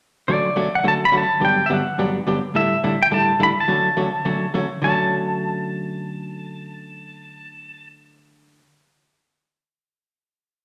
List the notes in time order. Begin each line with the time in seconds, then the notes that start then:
0.28 D3 F#3 A3 C#4 F#4 D5
0.56 D3 F#3 A3 C#4 F#4
0.75 F#5
0.84 D3 F#3 A3 C#4 F#4
0.88 A5
1.05 B5
1.11 D3 F#3 A3 C#4 F#4
1.18 A5
1.40 G2 D3 F#3 B3 D4 G4
1.45 G5
1.66 G2 D3 F#3 B3 E5
1.71 D4 G4 F#5
1.98 G2 D3 F#3 B3 D4 G4
2.27 G2 D3 F#3 B3 D4 G4
2.54 A2 D3 G3 D4 E4 A4 E5
2.83 A2 D3 G3 D4 E4 A4
3.02 G5
3.11 A2 D3 G3 D4 E4 A4 A5
3.39 A2 D3 G3 D4 E4 A4
3.43 B5
3.60 A5
3.68 D3 F#3 A3 C#4 F#4
3.97 D3 F#3 A3 C#4 F#4
4.25 D3 F#3 A3 C#4 F#4
4.54 D3 F#3 A3 C#4 F#4
4.82 D3 F#3 A3 C#4 F#4 A5